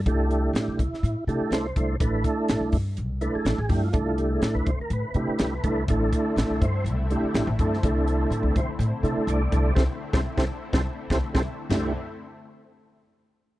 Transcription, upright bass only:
X:1
M:4/4
L:1/16
Q:1/4=124
K:C
V:1 name="Upright bass" clef=bass
C,,4 A,, C,, C,, z A,, z C, z C,,2 C,,2 | A,,,2 z2 A,,, C,, G,,2 C,,3 z A,,, A,,, G,,2 | C,,4 A,, C,, C,, z A,, z C, z C,,2 C,,2 | A,,,2 z2 A,,, C,, G,,2 C,,3 z A,,, A,,, G,,2 |
C,,4 A,, C,, C,, z A,, z C, z C,,2 C,,2 | C,, z2 C,, z C,, z2 C,, z2 C,, z C,, z2 | C,,2 z12 z2 |]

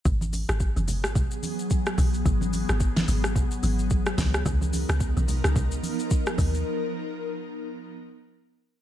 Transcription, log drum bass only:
X:1
M:4/4
L:1/16
Q:"Swing 16ths" 1/4=109
K:G#dor
V:1 name="Log drum bass" clef=bass
G,,,3 G,,,2 F,,,2 G,,,3 z4 B,,,2 | G,,,3 G,,,3 G,,,4 G,,,4 C,,2 | C,,3 C,,2 B,,,2 C,,3 z4 D,,2 | z16 |]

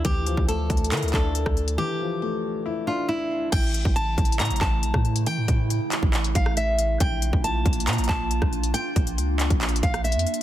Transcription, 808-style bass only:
X:1
M:4/4
L:1/16
Q:1/4=138
K:Aphr
V:1 name="808-style bass" clef=bass
D,,3 D,,3 D,,2 D, D,, D,,3 D,,3 | z16 | A,,,3 A,,,3 A,,,2 A,, A,,, A,,,2 B,,, A,,3 | E, A,, A,,3 z2 A,,,3 A,,,6 |
B,,,3 B,,,3 B,,,2 B,, B,,, B,,,3 B,,,3 | z2 B,,,2 ^C,,3 B,,,2 A,,, B,,,3 F,, z2 |]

